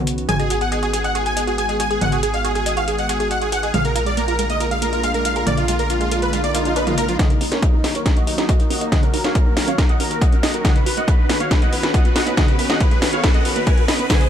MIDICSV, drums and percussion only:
0, 0, Header, 1, 2, 480
1, 0, Start_track
1, 0, Key_signature, -6, "minor"
1, 0, Tempo, 431655
1, 319, Time_signature, 4, 2, 24, 8
1, 15895, End_track
2, 0, Start_track
2, 0, Title_t, "Drums"
2, 79, Note_on_c, 9, 42, 79
2, 190, Note_off_c, 9, 42, 0
2, 199, Note_on_c, 9, 42, 36
2, 311, Note_off_c, 9, 42, 0
2, 319, Note_on_c, 9, 42, 59
2, 319, Note_on_c, 9, 47, 76
2, 431, Note_off_c, 9, 42, 0
2, 431, Note_off_c, 9, 47, 0
2, 440, Note_on_c, 9, 42, 37
2, 551, Note_off_c, 9, 42, 0
2, 559, Note_on_c, 9, 42, 84
2, 671, Note_off_c, 9, 42, 0
2, 679, Note_on_c, 9, 42, 34
2, 791, Note_off_c, 9, 42, 0
2, 800, Note_on_c, 9, 42, 60
2, 911, Note_off_c, 9, 42, 0
2, 919, Note_on_c, 9, 42, 36
2, 1031, Note_off_c, 9, 42, 0
2, 1040, Note_on_c, 9, 42, 82
2, 1151, Note_off_c, 9, 42, 0
2, 1160, Note_on_c, 9, 42, 37
2, 1271, Note_off_c, 9, 42, 0
2, 1280, Note_on_c, 9, 42, 59
2, 1391, Note_off_c, 9, 42, 0
2, 1400, Note_on_c, 9, 42, 36
2, 1512, Note_off_c, 9, 42, 0
2, 1520, Note_on_c, 9, 42, 85
2, 1631, Note_off_c, 9, 42, 0
2, 1640, Note_on_c, 9, 42, 35
2, 1751, Note_off_c, 9, 42, 0
2, 1760, Note_on_c, 9, 42, 60
2, 1871, Note_off_c, 9, 42, 0
2, 1880, Note_on_c, 9, 42, 35
2, 1991, Note_off_c, 9, 42, 0
2, 2000, Note_on_c, 9, 42, 82
2, 2111, Note_off_c, 9, 42, 0
2, 2120, Note_on_c, 9, 42, 36
2, 2231, Note_off_c, 9, 42, 0
2, 2240, Note_on_c, 9, 42, 61
2, 2240, Note_on_c, 9, 47, 76
2, 2351, Note_off_c, 9, 42, 0
2, 2351, Note_off_c, 9, 47, 0
2, 2359, Note_on_c, 9, 42, 37
2, 2470, Note_off_c, 9, 42, 0
2, 2479, Note_on_c, 9, 42, 84
2, 2590, Note_off_c, 9, 42, 0
2, 2599, Note_on_c, 9, 42, 37
2, 2710, Note_off_c, 9, 42, 0
2, 2720, Note_on_c, 9, 42, 61
2, 2831, Note_off_c, 9, 42, 0
2, 2840, Note_on_c, 9, 42, 37
2, 2951, Note_off_c, 9, 42, 0
2, 2959, Note_on_c, 9, 42, 83
2, 3071, Note_off_c, 9, 42, 0
2, 3079, Note_on_c, 9, 42, 37
2, 3190, Note_off_c, 9, 42, 0
2, 3199, Note_on_c, 9, 42, 63
2, 3310, Note_off_c, 9, 42, 0
2, 3319, Note_on_c, 9, 42, 37
2, 3431, Note_off_c, 9, 42, 0
2, 3439, Note_on_c, 9, 42, 88
2, 3550, Note_off_c, 9, 42, 0
2, 3559, Note_on_c, 9, 42, 37
2, 3670, Note_off_c, 9, 42, 0
2, 3678, Note_on_c, 9, 42, 62
2, 3790, Note_off_c, 9, 42, 0
2, 3798, Note_on_c, 9, 42, 36
2, 3909, Note_off_c, 9, 42, 0
2, 3918, Note_on_c, 9, 42, 82
2, 4029, Note_off_c, 9, 42, 0
2, 4038, Note_on_c, 9, 42, 39
2, 4149, Note_off_c, 9, 42, 0
2, 4159, Note_on_c, 9, 42, 62
2, 4159, Note_on_c, 9, 47, 74
2, 4270, Note_off_c, 9, 42, 0
2, 4270, Note_off_c, 9, 47, 0
2, 4279, Note_on_c, 9, 42, 38
2, 4390, Note_off_c, 9, 42, 0
2, 4399, Note_on_c, 9, 42, 88
2, 4510, Note_off_c, 9, 42, 0
2, 4520, Note_on_c, 9, 42, 38
2, 4631, Note_off_c, 9, 42, 0
2, 4639, Note_on_c, 9, 42, 65
2, 4751, Note_off_c, 9, 42, 0
2, 4760, Note_on_c, 9, 42, 40
2, 4871, Note_off_c, 9, 42, 0
2, 4880, Note_on_c, 9, 42, 86
2, 4991, Note_off_c, 9, 42, 0
2, 5000, Note_on_c, 9, 42, 39
2, 5111, Note_off_c, 9, 42, 0
2, 5120, Note_on_c, 9, 42, 66
2, 5231, Note_off_c, 9, 42, 0
2, 5241, Note_on_c, 9, 42, 39
2, 5352, Note_off_c, 9, 42, 0
2, 5360, Note_on_c, 9, 42, 92
2, 5471, Note_off_c, 9, 42, 0
2, 5479, Note_on_c, 9, 42, 37
2, 5591, Note_off_c, 9, 42, 0
2, 5599, Note_on_c, 9, 42, 65
2, 5710, Note_off_c, 9, 42, 0
2, 5719, Note_on_c, 9, 42, 39
2, 5830, Note_off_c, 9, 42, 0
2, 5839, Note_on_c, 9, 42, 88
2, 5950, Note_off_c, 9, 42, 0
2, 5959, Note_on_c, 9, 42, 38
2, 6070, Note_off_c, 9, 42, 0
2, 6079, Note_on_c, 9, 42, 65
2, 6079, Note_on_c, 9, 47, 70
2, 6190, Note_off_c, 9, 42, 0
2, 6190, Note_off_c, 9, 47, 0
2, 6199, Note_on_c, 9, 42, 39
2, 6310, Note_off_c, 9, 42, 0
2, 6319, Note_on_c, 9, 42, 92
2, 6430, Note_off_c, 9, 42, 0
2, 6440, Note_on_c, 9, 42, 38
2, 6551, Note_off_c, 9, 42, 0
2, 6560, Note_on_c, 9, 42, 67
2, 6671, Note_off_c, 9, 42, 0
2, 6680, Note_on_c, 9, 42, 39
2, 6791, Note_off_c, 9, 42, 0
2, 6800, Note_on_c, 9, 42, 91
2, 6911, Note_off_c, 9, 42, 0
2, 6919, Note_on_c, 9, 42, 41
2, 7030, Note_off_c, 9, 42, 0
2, 7039, Note_on_c, 9, 42, 67
2, 7150, Note_off_c, 9, 42, 0
2, 7159, Note_on_c, 9, 42, 41
2, 7270, Note_off_c, 9, 42, 0
2, 7279, Note_on_c, 9, 42, 90
2, 7390, Note_off_c, 9, 42, 0
2, 7399, Note_on_c, 9, 42, 39
2, 7510, Note_off_c, 9, 42, 0
2, 7518, Note_on_c, 9, 42, 66
2, 7629, Note_off_c, 9, 42, 0
2, 7639, Note_on_c, 9, 42, 39
2, 7639, Note_on_c, 9, 47, 55
2, 7750, Note_off_c, 9, 42, 0
2, 7750, Note_off_c, 9, 47, 0
2, 7758, Note_on_c, 9, 42, 89
2, 7869, Note_off_c, 9, 42, 0
2, 7879, Note_on_c, 9, 42, 41
2, 7990, Note_off_c, 9, 42, 0
2, 7998, Note_on_c, 9, 36, 116
2, 7999, Note_on_c, 9, 38, 47
2, 7999, Note_on_c, 9, 42, 78
2, 7999, Note_on_c, 9, 47, 73
2, 8110, Note_off_c, 9, 36, 0
2, 8110, Note_off_c, 9, 38, 0
2, 8110, Note_off_c, 9, 42, 0
2, 8110, Note_off_c, 9, 47, 0
2, 8119, Note_on_c, 9, 42, 36
2, 8231, Note_off_c, 9, 42, 0
2, 8239, Note_on_c, 9, 46, 98
2, 8351, Note_off_c, 9, 46, 0
2, 8359, Note_on_c, 9, 38, 41
2, 8359, Note_on_c, 9, 42, 51
2, 8470, Note_off_c, 9, 38, 0
2, 8470, Note_off_c, 9, 42, 0
2, 8479, Note_on_c, 9, 36, 117
2, 8479, Note_on_c, 9, 42, 80
2, 8590, Note_off_c, 9, 36, 0
2, 8590, Note_off_c, 9, 42, 0
2, 8719, Note_on_c, 9, 38, 48
2, 8719, Note_on_c, 9, 46, 102
2, 8830, Note_off_c, 9, 38, 0
2, 8830, Note_off_c, 9, 46, 0
2, 8840, Note_on_c, 9, 42, 53
2, 8951, Note_off_c, 9, 42, 0
2, 8959, Note_on_c, 9, 36, 115
2, 8960, Note_on_c, 9, 38, 52
2, 8960, Note_on_c, 9, 42, 80
2, 9070, Note_off_c, 9, 36, 0
2, 9071, Note_off_c, 9, 38, 0
2, 9071, Note_off_c, 9, 42, 0
2, 9080, Note_on_c, 9, 42, 37
2, 9191, Note_off_c, 9, 42, 0
2, 9200, Note_on_c, 9, 46, 105
2, 9311, Note_off_c, 9, 46, 0
2, 9320, Note_on_c, 9, 38, 44
2, 9320, Note_on_c, 9, 42, 54
2, 9431, Note_off_c, 9, 38, 0
2, 9431, Note_off_c, 9, 42, 0
2, 9439, Note_on_c, 9, 36, 119
2, 9440, Note_on_c, 9, 42, 80
2, 9551, Note_off_c, 9, 36, 0
2, 9551, Note_off_c, 9, 42, 0
2, 9560, Note_on_c, 9, 42, 37
2, 9671, Note_off_c, 9, 42, 0
2, 9680, Note_on_c, 9, 46, 99
2, 9791, Note_off_c, 9, 46, 0
2, 9800, Note_on_c, 9, 42, 55
2, 9911, Note_off_c, 9, 42, 0
2, 9919, Note_on_c, 9, 36, 121
2, 9920, Note_on_c, 9, 38, 51
2, 9920, Note_on_c, 9, 42, 75
2, 9920, Note_on_c, 9, 47, 73
2, 10030, Note_off_c, 9, 36, 0
2, 10031, Note_off_c, 9, 38, 0
2, 10031, Note_off_c, 9, 42, 0
2, 10031, Note_off_c, 9, 47, 0
2, 10040, Note_on_c, 9, 42, 37
2, 10151, Note_off_c, 9, 42, 0
2, 10159, Note_on_c, 9, 46, 103
2, 10271, Note_off_c, 9, 46, 0
2, 10280, Note_on_c, 9, 38, 46
2, 10280, Note_on_c, 9, 42, 51
2, 10391, Note_off_c, 9, 38, 0
2, 10391, Note_off_c, 9, 42, 0
2, 10399, Note_on_c, 9, 36, 116
2, 10399, Note_on_c, 9, 42, 77
2, 10510, Note_off_c, 9, 36, 0
2, 10510, Note_off_c, 9, 42, 0
2, 10639, Note_on_c, 9, 38, 52
2, 10639, Note_on_c, 9, 46, 103
2, 10750, Note_off_c, 9, 38, 0
2, 10750, Note_off_c, 9, 46, 0
2, 10760, Note_on_c, 9, 42, 52
2, 10871, Note_off_c, 9, 42, 0
2, 10879, Note_on_c, 9, 36, 119
2, 10880, Note_on_c, 9, 38, 57
2, 10880, Note_on_c, 9, 42, 78
2, 10990, Note_off_c, 9, 36, 0
2, 10991, Note_off_c, 9, 38, 0
2, 10991, Note_off_c, 9, 42, 0
2, 11000, Note_on_c, 9, 42, 35
2, 11112, Note_off_c, 9, 42, 0
2, 11120, Note_on_c, 9, 46, 107
2, 11231, Note_off_c, 9, 46, 0
2, 11240, Note_on_c, 9, 42, 51
2, 11352, Note_off_c, 9, 42, 0
2, 11359, Note_on_c, 9, 36, 125
2, 11361, Note_on_c, 9, 42, 79
2, 11470, Note_off_c, 9, 36, 0
2, 11472, Note_off_c, 9, 42, 0
2, 11481, Note_on_c, 9, 42, 36
2, 11592, Note_off_c, 9, 42, 0
2, 11600, Note_on_c, 9, 38, 57
2, 11600, Note_on_c, 9, 46, 105
2, 11711, Note_off_c, 9, 38, 0
2, 11711, Note_off_c, 9, 46, 0
2, 11720, Note_on_c, 9, 42, 51
2, 11832, Note_off_c, 9, 42, 0
2, 11839, Note_on_c, 9, 36, 121
2, 11841, Note_on_c, 9, 38, 57
2, 11841, Note_on_c, 9, 42, 77
2, 11841, Note_on_c, 9, 47, 81
2, 11950, Note_off_c, 9, 36, 0
2, 11952, Note_off_c, 9, 38, 0
2, 11952, Note_off_c, 9, 42, 0
2, 11952, Note_off_c, 9, 47, 0
2, 11961, Note_on_c, 9, 42, 34
2, 12072, Note_off_c, 9, 42, 0
2, 12081, Note_on_c, 9, 46, 110
2, 12192, Note_off_c, 9, 46, 0
2, 12201, Note_on_c, 9, 42, 49
2, 12313, Note_off_c, 9, 42, 0
2, 12319, Note_on_c, 9, 36, 121
2, 12320, Note_on_c, 9, 42, 73
2, 12430, Note_off_c, 9, 36, 0
2, 12431, Note_off_c, 9, 42, 0
2, 12560, Note_on_c, 9, 38, 60
2, 12560, Note_on_c, 9, 46, 104
2, 12671, Note_off_c, 9, 38, 0
2, 12671, Note_off_c, 9, 46, 0
2, 12680, Note_on_c, 9, 42, 50
2, 12792, Note_off_c, 9, 42, 0
2, 12799, Note_on_c, 9, 36, 121
2, 12799, Note_on_c, 9, 38, 62
2, 12799, Note_on_c, 9, 42, 76
2, 12910, Note_off_c, 9, 36, 0
2, 12911, Note_off_c, 9, 38, 0
2, 12911, Note_off_c, 9, 42, 0
2, 12920, Note_on_c, 9, 42, 36
2, 13031, Note_off_c, 9, 42, 0
2, 13039, Note_on_c, 9, 46, 110
2, 13151, Note_off_c, 9, 46, 0
2, 13159, Note_on_c, 9, 38, 53
2, 13159, Note_on_c, 9, 42, 49
2, 13270, Note_off_c, 9, 38, 0
2, 13270, Note_off_c, 9, 42, 0
2, 13279, Note_on_c, 9, 36, 125
2, 13279, Note_on_c, 9, 42, 75
2, 13390, Note_off_c, 9, 36, 0
2, 13390, Note_off_c, 9, 42, 0
2, 13400, Note_on_c, 9, 42, 34
2, 13511, Note_off_c, 9, 42, 0
2, 13518, Note_on_c, 9, 38, 63
2, 13518, Note_on_c, 9, 46, 104
2, 13629, Note_off_c, 9, 38, 0
2, 13629, Note_off_c, 9, 46, 0
2, 13639, Note_on_c, 9, 42, 50
2, 13751, Note_off_c, 9, 42, 0
2, 13759, Note_on_c, 9, 36, 122
2, 13760, Note_on_c, 9, 38, 65
2, 13760, Note_on_c, 9, 42, 74
2, 13760, Note_on_c, 9, 47, 82
2, 13870, Note_off_c, 9, 36, 0
2, 13871, Note_off_c, 9, 38, 0
2, 13871, Note_off_c, 9, 42, 0
2, 13871, Note_off_c, 9, 47, 0
2, 13879, Note_on_c, 9, 42, 35
2, 13991, Note_off_c, 9, 42, 0
2, 13999, Note_on_c, 9, 46, 108
2, 14110, Note_off_c, 9, 46, 0
2, 14119, Note_on_c, 9, 38, 59
2, 14119, Note_on_c, 9, 42, 48
2, 14230, Note_off_c, 9, 38, 0
2, 14230, Note_off_c, 9, 42, 0
2, 14238, Note_on_c, 9, 42, 73
2, 14239, Note_on_c, 9, 36, 118
2, 14350, Note_off_c, 9, 36, 0
2, 14350, Note_off_c, 9, 42, 0
2, 14359, Note_on_c, 9, 42, 35
2, 14470, Note_off_c, 9, 42, 0
2, 14478, Note_on_c, 9, 38, 68
2, 14478, Note_on_c, 9, 46, 106
2, 14589, Note_off_c, 9, 38, 0
2, 14589, Note_off_c, 9, 46, 0
2, 14597, Note_on_c, 9, 42, 49
2, 14709, Note_off_c, 9, 42, 0
2, 14718, Note_on_c, 9, 38, 70
2, 14718, Note_on_c, 9, 42, 74
2, 14719, Note_on_c, 9, 36, 119
2, 14829, Note_off_c, 9, 38, 0
2, 14829, Note_off_c, 9, 42, 0
2, 14830, Note_off_c, 9, 36, 0
2, 14837, Note_on_c, 9, 42, 35
2, 14949, Note_off_c, 9, 42, 0
2, 14958, Note_on_c, 9, 46, 107
2, 15069, Note_off_c, 9, 46, 0
2, 15078, Note_on_c, 9, 42, 50
2, 15189, Note_off_c, 9, 42, 0
2, 15199, Note_on_c, 9, 36, 124
2, 15199, Note_on_c, 9, 42, 74
2, 15310, Note_off_c, 9, 36, 0
2, 15310, Note_off_c, 9, 42, 0
2, 15318, Note_on_c, 9, 42, 33
2, 15430, Note_off_c, 9, 42, 0
2, 15438, Note_on_c, 9, 38, 68
2, 15438, Note_on_c, 9, 46, 103
2, 15549, Note_off_c, 9, 38, 0
2, 15549, Note_off_c, 9, 46, 0
2, 15558, Note_on_c, 9, 42, 51
2, 15669, Note_off_c, 9, 42, 0
2, 15679, Note_on_c, 9, 36, 115
2, 15679, Note_on_c, 9, 38, 74
2, 15679, Note_on_c, 9, 42, 73
2, 15679, Note_on_c, 9, 47, 80
2, 15679, Note_on_c, 9, 82, 34
2, 15790, Note_off_c, 9, 36, 0
2, 15790, Note_off_c, 9, 38, 0
2, 15790, Note_off_c, 9, 42, 0
2, 15790, Note_off_c, 9, 47, 0
2, 15790, Note_off_c, 9, 82, 0
2, 15799, Note_on_c, 9, 42, 35
2, 15895, Note_off_c, 9, 42, 0
2, 15895, End_track
0, 0, End_of_file